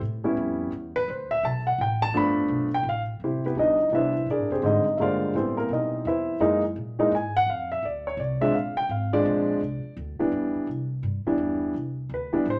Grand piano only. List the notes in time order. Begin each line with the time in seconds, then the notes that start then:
0.24 G3 B3 C#4 E4
0.96 B4
1.10 C5
1.31 E5
1.45 A5
1.67 F#5
1.81 G5
2.02 A5
2.14 F3 A3 B3 D4 B5
2.74 G5
2.89 F5
3.24 C4 E4 G4 C5
3.46 B3 E4 G4 B4
3.57 E3 G3 B3 D4 D#4 D#5
3.92 E3 G3 B3 D4 E4 B4 C5 E5
4.31 D4 G#4 A#4 D5
4.52 C4 G4 G#4 C5
4.63 D3 G3 G#3 C4 D#4 D#5
4.97 D3 G3 G#3 A#3 F4 E5
5.01 C5 D5 F5
5.35 E3 G3 B3 C4 G4 A4 C5
5.57 A#3 A#4
5.73 D#4 D#5
6.07 E4 B4 C5 E5
6.40 E3 G#3 A#3 D#4
6.99 E3 G#3 A#3 D#4
7.15 G#5
7.37 F#5
7.50 F5
7.72 E5
7.85 D5
8.07 C#5
8.20 D5
8.41 F3 G#3 C4 D4 E5
8.55 F5
8.77 G5
8.91 F5
9.13 F3 G#3 C4 D4 D5
10.19 E3 G3 B3 D4
11.27 E3 G3 B3 D4
12.14 B4
12.33 E3 G3 B3 D4
12.50 C5